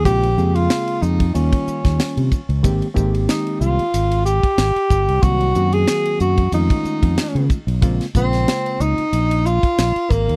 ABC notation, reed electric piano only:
X:1
M:4/4
L:1/8
Q:"Swing 16ths" 1/4=93
K:Bbdor
V:1 name="Reed electric piano"
[D,A,B,CF] [D,A,B,CA]3 [E,G,B,DF]3 z | [E,A,B,CG] [E,A,B,CG]3 z4 | [E,_G,B,C_G] [E,G,B,CG]3 [E,^G,=A,^CF]3 z | [D,A,B,CF] [D,A,B,CF]3 z4 |]